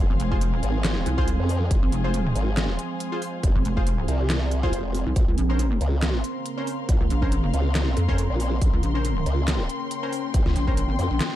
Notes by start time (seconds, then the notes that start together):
Already playing: F3 G#3 C4 G#4 F5 C6
0.10 G#1
0.20 F1, closed hi-hat
0.32 F4 G#4 C5, kick
0.41 closed hi-hat
0.63 G#1, closed hi-hat
0.84 snare, clap, closed hi-hat
1.06 C2, closed hi-hat
1.18 F4 G#4 C5, kick
1.28 closed hi-hat
1.39 F2
1.49 open hi-hat
1.71 F1, kick, closed hi-hat
1.83 G#1
1.92 F1, closed hi-hat
2.04 F4 G#4 C5
2.14 closed hi-hat
2.36 G#1, closed hi-hat
2.57 snare, clap, closed hi-hat
2.79 closed hi-hat
3.00 closed hi-hat
3.12 F4 G#4 C5
3.22 open hi-hat
3.43 F1, kick, closed hi-hat
3.55 G#1
3.65 F1, closed hi-hat
3.77 F4 G#4 C5, kick
3.87 closed hi-hat
4.08 C2, closed hi-hat
4.30 snare, clap, closed hi-hat
4.51 closed hi-hat
4.63 F4 G#4 C5, kick
4.73 F1, closed hi-hat
4.95 open hi-hat
5.06 C2
5.16 A#1 C#3 A#3, kick, closed hi-hat
5.28 C#2
5.38 A#1, closed hi-hat
5.50 C#4 A#4 C5
5.55 A#4
5.59 closed hi-hat
5.81 C#2, closed hi-hat
6.00 C6, snare, clap, closed hi-hat
6.24 closed hi-hat
6.30 F5
6.46 closed hi-hat
6.57 C#4 A#4 C5
6.67 open hi-hat
6.89 A#1, kick, closed hi-hat
7.01 C#2
7.10 A#1, closed hi-hat
7.22 C#4 A#4 C5, kick
7.32 closed hi-hat
7.54 C#2, closed hi-hat
7.75 snare, clap, closed hi-hat
7.97 F2, closed hi-hat
8.09 C#4 A#4 C5, kick
8.18 closed hi-hat
8.30 A#1
8.40 open hi-hat
8.62 A#1 C#4, kick, closed hi-hat
8.73 C#2
8.83 A#1, closed hi-hat
8.95 C#4 A#4 C5
9.05 closed hi-hat
9.26 C#2, closed hi-hat
9.37 G5
9.48 snare, clap, closed hi-hat
9.69 closed hi-hat
9.91 closed hi-hat
10.03 C#4 A#4 C5
10.13 open hi-hat
10.34 A#1, kick, closed hi-hat
10.46 C#2, snare
10.56 A#1, closed hi-hat
10.68 C#4 A#4 C5, kick
10.77 closed hi-hat
10.99 F2, open hi-hat
11.11 A#1
11.21 snare, clap, closed hi-hat